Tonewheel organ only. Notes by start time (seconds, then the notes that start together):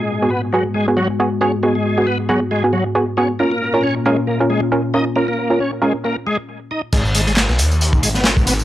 0.00 G#3
0.30 B3
0.53 F#3
0.74 G#3
0.97 F#3
1.41 C#4
1.63 G#3
1.75 G#3
2.07 B3
2.29 F#3
2.51 G#3
2.73 F#3
3.17 C#4
3.39 A#3
3.51 A#3
3.83 C#4
4.06 G#3
4.27 A#3
4.50 G#3
4.94 D#4
5.16 A#3
5.28 A#3
5.60 C#4
5.82 G#3
6.05 A#3
6.27 G#3
6.71 D#4
6.93 G#3
7.15 G#3
7.27 G#3
8.03 G#3
8.16 B3
8.25 C#4
8.47 B3